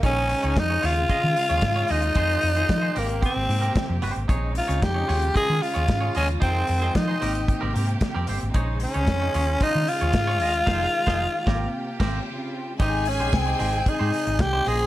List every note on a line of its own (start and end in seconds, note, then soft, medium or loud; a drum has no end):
0.03 0.33 A#1 loud
0.03 2.14 C#3 medium
0.03 2.93 G#3 medium
0.03 0.61 C#4 loud
0.03 0.82 D#4 medium
0.03 0.27 D#4 medium
0.03 0.28 G#4 loud
0.03 0.82 C5 medium
0.03 0.28 C#5 medium
0.03 kick loud
0.03 closed hi-hat medium
0.29 muted clean electric guitar stroke soft
0.29 open hi-hat medium
0.43 0.53 C#2 medium
0.43 0.54 D#4 soft
0.43 0.55 G#4 medium
0.43 0.56 C#5 medium
0.43 closed hi-hat soft
0.55 0.77 F2 medium
0.55 0.87 D#4 loud
0.55 muted clean electric guitar stroke soft
0.55 kick loud
0.55 snare loud
0.55 closed hi-hat medium
0.69 0.81 D#4 soft
0.69 0.82 G#4 medium
0.69 0.82 C#5 medium
0.82 1.03 D#2 medium
0.82 1.02 F4 medium
0.82 2.93 F4 medium
0.82 0.96 G#4 medium
0.82 0.95 C#5 loud
0.82 open hi-hat medium
0.86 1.93 F4 loud
0.96 muted clean electric guitar stroke soft
0.96 closed hi-hat soft
1.09 1.29 F4 medium
1.09 1.23 G#4 medium
1.09 1.22 D#5 medium
1.09 muted fingered electric bass stroke medium
1.09 kick loud
1.09 closed hi-hat medium
1.23 1.33 D#3 medium
1.23 muted clean electric guitar stroke medium
1.36 muted clean electric guitar stroke soft
1.36 open hi-hat medium
1.49 1.60 D#2 medium
1.49 1.62 F4 soft
1.49 1.63 G#4 soft
1.49 1.63 C#5 medium
1.49 closed hi-hat soft
1.61 1.83 G#2 medium
1.61 muted clean electric guitar stroke soft
1.61 kick loud
1.61 snare loud
1.61 closed hi-hat medium
1.76 1.87 F4 medium
1.76 1.88 G#4 medium
1.76 1.89 C#5 medium
1.88 2.10 D#2 medium
1.88 3.00 D#4 loud
1.88 2.04 F4 medium
1.88 2.02 G#4 medium
1.88 2.02 D#5 medium
1.88 open hi-hat medium
2.02 muted clean electric guitar stroke soft
2.02 closed hi-hat soft
2.15 2.36 F2 loud
2.15 2.95 D#3 medium
2.15 2.40 D#4 medium
2.15 2.40 G#4 medium
2.15 2.41 C5 medium
2.15 kick loud
2.15 closed hi-hat medium
2.41 2.63 F2 loud
2.41 muted clean electric guitar stroke soft
2.41 open hi-hat medium
2.56 2.68 D#4 soft
2.56 2.69 G#4 medium
2.56 2.69 C5 medium
2.56 closed hi-hat soft
2.69 2.89 F3 medium
2.69 muted clean electric guitar stroke soft
2.69 kick loud
2.69 snare loud
2.69 closed hi-hat medium
2.82 2.95 D#4 soft
2.82 2.96 G#4 soft
2.82 2.97 C5 medium
2.95 3.26 G#1 loud
2.95 4.27 C3 medium
2.95 4.27 A#3 medium
2.95 3.24 A#3 medium
2.95 3.15 C4 medium
2.95 4.27 G4 medium
2.95 3.09 G4 medium
2.95 3.07 A#4 medium
2.95 open hi-hat medium
3.08 muted clean electric guitar stroke medium
3.08 closed hi-hat soft
3.22 3.41 C4 medium
3.22 4.00 C4 medium
3.22 3.35 G4 medium
3.22 3.35 C5 medium
3.22 kick loud
3.22 closed hi-hat medium
3.36 3.46 G#1 medium
3.36 muted clean electric guitar stroke soft
3.49 3.69 G#2 medium
3.49 muted clean electric guitar stroke soft
3.49 open hi-hat medium
3.61 3.74 C4 soft
3.61 3.75 G4 soft
3.61 3.75 A#4 medium
3.61 closed hi-hat soft
3.75 muted clean electric guitar stroke soft
3.75 kick loud
3.75 snare loud
3.75 closed hi-hat medium
3.89 3.99 F2 medium
3.89 muted clean electric guitar stroke soft
4.02 4.12 G1 medium
4.02 4.22 C4 medium
4.02 4.16 G4 medium
4.02 4.15 C5 medium
4.02 open hi-hat medium
4.16 4.26 G#1 medium
4.16 muted clean electric guitar stroke soft
4.16 closed hi-hat soft
4.28 4.59 A#1 loud
4.28 6.40 C#3 medium
4.28 7.19 G#3 medium
4.28 5.08 C4 medium
4.28 4.53 D#4 medium
4.28 5.08 D#4 medium
4.28 4.53 G#4 medium
4.28 4.54 C#5 medium
4.28 kick loud
4.28 closed hi-hat medium
4.55 4.85 F4 medium
4.55 muted clean electric guitar stroke soft
4.55 open hi-hat medium
4.68 4.79 C#2 medium
4.68 4.81 D#4 soft
4.68 4.81 G#4 medium
4.68 4.82 C#5 medium
4.68 closed hi-hat soft
4.82 5.02 F2 medium
4.82 5.36 G4 loud
4.82 muted clean electric guitar stroke soft
4.82 kick loud
4.82 snare loud
4.82 closed hi-hat soft
4.94 5.08 D#4 soft
4.94 5.07 G#4 soft
4.94 5.08 C#5 medium
5.08 5.29 D#2 loud
5.08 5.28 F4 medium
5.08 7.20 F4 medium
5.08 5.21 G#4 medium
5.08 5.20 C#5 medium
5.08 open hi-hat medium
5.21 muted clean electric guitar stroke soft
5.21 closed hi-hat soft
5.34 5.54 F4 medium
5.34 5.48 G#4 medium
5.34 5.64 G#4 loud
5.34 5.47 D#5 medium
5.34 kick loud
5.34 closed hi-hat medium
5.48 5.59 D#3 medium
5.48 muted clean electric guitar stroke soft
5.60 6.15 F4 loud
5.60 muted clean electric guitar stroke soft
5.60 open hi-hat medium
5.74 5.86 D#2 medium
5.74 5.86 F4 medium
5.74 5.87 G#4 medium
5.74 5.87 C#5 medium
5.74 closed hi-hat soft
5.88 6.09 G#2 medium
5.88 muted clean electric guitar stroke soft
5.88 kick loud
5.88 snare loud
5.88 closed hi-hat medium
6.01 6.13 F4 medium
6.01 6.14 G#4 medium
6.01 6.16 C#5 medium
6.15 6.36 D#2 medium
6.15 6.28 C#4 loud
6.15 6.30 F4 medium
6.15 6.27 G#4 medium
6.15 6.27 D#5 medium
6.15 open hi-hat medium
6.28 muted clean electric guitar stroke soft
6.28 closed hi-hat soft
6.40 6.62 F2 loud
6.40 7.21 D#3 medium
6.40 6.97 C4 loud
6.40 6.65 D#4 medium
6.40 6.66 G#4 medium
6.40 6.66 C5 loud
6.40 kick loud
6.40 closed hi-hat medium
6.67 6.89 F2 loud
6.67 open hi-hat medium
6.82 6.93 D#4 medium
6.82 6.94 G#4 medium
6.82 6.95 C5 medium
6.82 closed hi-hat soft
6.94 7.15 F3 medium
6.94 7.75 D#4 medium
6.94 muted clean electric guitar stroke soft
6.94 kick loud
6.94 snare loud
6.94 closed hi-hat medium
7.08 7.22 D#4 soft
7.08 7.22 G#4 medium
7.08 7.23 C5 medium
7.21 7.52 G#1 loud
7.21 8.53 C3 medium
7.21 8.53 A#3 medium
7.21 7.41 C4 medium
7.21 8.53 G4 medium
7.21 7.34 G4 medium
7.21 7.33 A#4 medium
7.21 open hi-hat medium
7.34 muted clean electric guitar stroke soft
7.34 closed hi-hat soft
7.48 muted clean electric guitar stroke soft
7.48 kick loud
7.48 closed hi-hat medium
7.61 7.72 G#1 loud
7.61 7.73 C4 medium
7.61 7.74 G4 medium
7.61 7.75 A#4 medium
7.74 7.95 G#2 medium
7.74 7.90 C4 medium
7.74 7.88 G4 medium
7.74 7.87 A#4 medium
7.74 open hi-hat medium
7.88 muted clean electric guitar stroke soft
7.88 closed hi-hat soft
8.01 muted clean electric guitar stroke soft
8.01 kick loud
8.01 snare loud
8.01 closed hi-hat medium
8.14 8.25 F2 medium
8.14 8.27 C4 medium
8.14 8.27 G4 medium
8.14 8.29 A#4 medium
8.27 8.38 G1 medium
8.27 8.43 C4 medium
8.27 8.41 G4 medium
8.27 8.40 C5 medium
8.27 open hi-hat medium
8.41 8.52 G#1 medium
8.41 muted clean electric guitar stroke soft
8.41 closed hi-hat soft
8.54 8.85 A#1 loud
8.54 10.65 C#3 medium
8.54 9.33 G#3 medium
8.54 8.79 D#4 medium
8.54 9.33 D#4 medium
8.54 8.79 G#4 medium
8.54 9.33 C5 medium
8.54 8.80 C#5 loud
8.54 kick loud
8.54 closed hi-hat medium
8.80 9.64 C#4 medium
8.80 muted clean electric guitar stroke soft
8.80 open hi-hat medium
8.94 9.08 C#2 medium
8.94 9.07 D#4 soft
8.94 9.07 G#4 soft
8.94 9.08 C#5 medium
8.94 closed hi-hat soft
9.07 9.28 F2 medium
9.07 muted clean electric guitar stroke soft
9.07 kick loud
9.07 snare loud
9.07 closed hi-hat medium
9.21 9.34 D#4 soft
9.21 9.33 G#4 medium
9.21 9.35 C#5 medium
9.34 9.55 D#2 medium
9.34 11.45 G#3 medium
9.34 9.54 F4 medium
9.34 11.45 F4 medium
9.34 9.48 G#4 medium
9.34 9.47 C#5 medium
9.34 open hi-hat medium
9.47 muted clean electric guitar stroke soft
9.47 closed hi-hat soft
9.61 9.91 D#4 loud
9.61 9.81 F4 medium
9.61 9.75 G#4 medium
9.61 9.75 D#5 medium
9.61 kick loud
9.61 closed hi-hat medium
9.75 9.85 D#3 loud
9.75 muted clean electric guitar stroke soft
9.88 12.28 F4 loud
9.88 muted clean electric guitar stroke soft
9.88 open hi-hat medium
10.01 10.11 D#2 medium
10.01 10.13 F4 soft
10.01 10.13 G#4 medium
10.01 10.14 C#5 medium
10.01 closed hi-hat soft
10.13 muted clean electric guitar stroke soft
10.13 kick loud
10.13 snare loud
10.13 closed hi-hat medium
10.27 10.39 F4 medium
10.27 10.40 G#4 medium
10.27 10.41 C#5 medium
10.40 10.61 D#2 medium
10.40 10.56 F4 medium
10.40 10.54 G#4 medium
10.40 10.53 D#5 medium
10.40 open hi-hat medium
10.54 muted clean electric guitar stroke soft
10.54 closed hi-hat soft
10.66 10.86 F1 loud
10.66 11.46 D#3 medium
10.66 10.85 D#4 loud
10.66 10.85 G#4 loud
10.66 10.86 C5 medium
10.66 kick loud
10.66 snare loud
10.66 crash medium
11.07 11.25 F1 medium
11.07 11.26 D#4 loud
11.07 11.25 G#4 loud
11.07 11.25 C5 medium
11.07 kick loud
11.07 snare medium
11.47 11.65 G#1 loud
11.47 12.26 C3 medium
11.47 12.26 A#3 medium
11.47 11.65 C4 medium
11.47 12.78 G4 medium
11.47 11.65 G4 loud
11.47 11.66 A#4 loud
11.47 kick loud
11.47 snare loud
12.00 12.18 G#1 loud
12.00 12.19 C4 loud
12.00 12.18 G4 medium
12.00 12.18 A#4 medium
12.00 kick loud
12.00 snare loud
12.00 crash medium
12.26 12.79 C#3 medium
12.26 12.79 C4 medium
12.26 12.79 F4 medium
12.79 13.20 G#1 loud
12.79 14.64 C3 medium
12.79 14.64 G#3 medium
12.79 13.04 D#4 medium
12.79 13.10 D#4 medium
12.79 13.04 G4 medium
12.79 14.64 G#4 medium
12.79 14.36 G#4 medium
12.79 13.05 C5 medium
12.79 14.36 G#5 loud
12.79 kick loud
12.79 closed hi-hat medium
13.05 13.37 C#4 medium
13.05 muted clean electric guitar stroke soft
13.05 open hi-hat medium
13.20 13.30 A#1 medium
13.20 13.32 D#4 soft
13.20 13.33 G4 medium
13.20 13.33 C5 medium
13.20 closed hi-hat soft
13.33 13.53 C2 medium
13.33 13.90 C4 medium
13.33 kick loud
13.33 snare loud
13.33 closed hi-hat medium
13.46 13.58 D#4 medium
13.46 13.58 G4 soft
13.46 13.59 C5 medium
13.59 13.80 G#1 loud
13.59 13.79 D#4 medium
13.59 13.72 G4 medium
13.59 13.71 C5 medium
13.59 open hi-hat medium
13.72 muted clean electric guitar stroke soft
13.72 closed hi-hat soft
13.86 14.43 D#4 loud
13.86 muted clean electric guitar stroke soft
13.86 kick loud
13.86 closed hi-hat medium
13.99 14.10 G#2 loud
13.99 14.12 D#4 medium
13.99 14.12 G4 medium
13.99 14.13 C5 medium
14.13 muted clean electric guitar stroke soft
14.13 open hi-hat medium
14.27 14.37 G#1 medium
14.27 muted clean electric guitar stroke soft
14.27 closed hi-hat soft
14.39 14.59 C2 medium
14.39 14.70 G4 loud
14.39 muted clean electric guitar stroke soft
14.39 kick loud
14.39 snare loud
14.39 closed hi-hat medium
14.53 14.66 D#4 medium
14.53 14.67 G4 medium
14.53 14.68 C5 medium
14.65 14.86 A#1 medium
14.65 14.87 C#3 medium
14.65 14.87 A#3 medium
14.65 14.81 F4 medium
14.65 14.87 G#4 medium
14.65 14.80 G#4 medium
14.65 14.87 G#4 loud
14.65 14.87 C5 medium
14.65 14.79 D#5 medium
14.65 14.87 C6 loud
14.65 open hi-hat medium
14.79 muted clean electric guitar stroke soft
14.79 closed hi-hat soft